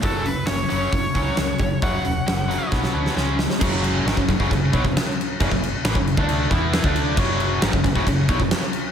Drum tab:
CC |----------------|----------------|x-x-x-x-x-x-x-x-|x-x-x-x-x-x-x-x-|
HH |o-o-o-o-o-o-o-o-|o-o-o-o---------|----------------|----------------|
SD |----o-------o---|----o---oo-oo-oo|----o-------oo--|----o-------o---|
BD |o-------o-o---o-|o-------o-------|o----oooo-oo----|oo---o-o--o--o--|

CC |x-x-x-x-x-x-x-x-|
HH |----------------|
SD |----o-------oo--|
BD |o----oooo-oo----|